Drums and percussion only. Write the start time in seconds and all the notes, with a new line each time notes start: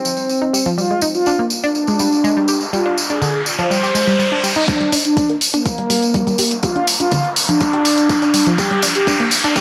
0.05 tambourine
0.17 tambourine
0.29 tambourine
0.54 tambourine
0.65 tambourine
0.78 tambourine
1.01 tambourine
1.15 tambourine
1.26 tambourine
1.50 tambourine
1.64 tambourine
1.75 tambourine
1.87 tambourine
1.99 tambourine
2.12 tambourine
2.24 tambourine
2.48 tambourine
2.61 tambourine
2.73 tambourine
2.98 tambourine
3.10 tambourine
3.22 tambourine
3.46 tambourine
3.59 tambourine
3.71 tambourine
3.84 tambourine
3.95 tambourine
4.08 tambourine
4.20 tambourine
4.44 tambourine
4.55 tambourine
4.68 kick, closed hi-hat, tambourine
4.81 closed hi-hat
4.92 open hi-hat, tambourine
5.05 closed hi-hat, tambourine
5.17 kick, closed hi-hat, tambourine
5.29 closed hi-hat
5.41 open hi-hat, tambourine
5.54 closed hi-hat, tambourine
5.66 kick, closed hi-hat, tambourine
5.78 closed hi-hat
5.90 open hi-hat, tambourine
6.03 closed hi-hat, tambourine
6.14 kick, closed hi-hat, tambourine
6.27 closed hi-hat, tambourine
6.38 open hi-hat, tambourine
6.51 closed hi-hat, tambourine
6.63 kick, closed hi-hat, tambourine
6.76 closed hi-hat
6.87 open hi-hat, tambourine
7.00 closed hi-hat, tambourine
7.11 kick, closed hi-hat, tambourine
7.24 closed hi-hat
7.36 open hi-hat, tambourine
7.49 closed hi-hat, tambourine
7.60 kick, closed hi-hat, tambourine
7.73 closed hi-hat
7.85 open hi-hat, tambourine
7.97 closed hi-hat, tambourine
8.09 kick, closed hi-hat, tambourine
8.22 closed hi-hat, tambourine
8.34 open hi-hat, tambourine
8.46 closed hi-hat, tambourine
8.58 kick, closed hi-hat, tambourine
8.71 closed hi-hat
8.82 open hi-hat, tambourine
8.95 closed hi-hat, tambourine
9.07 kick, closed hi-hat, tambourine
9.20 closed hi-hat
9.31 open hi-hat, tambourine
9.44 closed hi-hat, tambourine
9.56 kick, closed hi-hat, tambourine